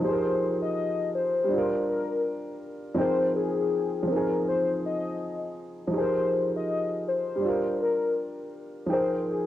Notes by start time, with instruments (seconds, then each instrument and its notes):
Already playing: upright piano F3
0.00 upright piano D#4 G4, soft synth lead C5
0.07 upright piano G#4 A#4
0.62 soft synth lead D#5
1.15 soft synth lead C5
1.44 upright piano G3
1.49 upright piano D4
1.53 upright piano F4
1.58 upright piano A#4
1.90 soft synth lead A#4
2.95 upright piano F3 C4 D#4 G5
3.00 upright piano G#4 A#4, soft synth lead C5
3.36 soft synth lead G#4
4.03 upright piano F3
4.07 upright piano C4, soft synth lead A#4
4.12 upright piano D#4
4.16 upright piano G#4
4.49 soft synth lead C5
4.86 soft synth lead D#5
5.87 upright piano F3 D#4
5.94 upright piano G4 G#4, soft synth lead C5
6.01 upright piano A#4
6.56 soft synth lead D#5
7.08 soft synth lead C5
7.36 upright piano G3
7.40 upright piano D4
7.45 upright piano F4
7.49 upright piano A#4
7.82 soft synth lead A#4
8.86 upright piano F3 D#4 G5
8.92 upright piano G#4 A#4, soft synth lead C5
9.30 soft synth lead G#4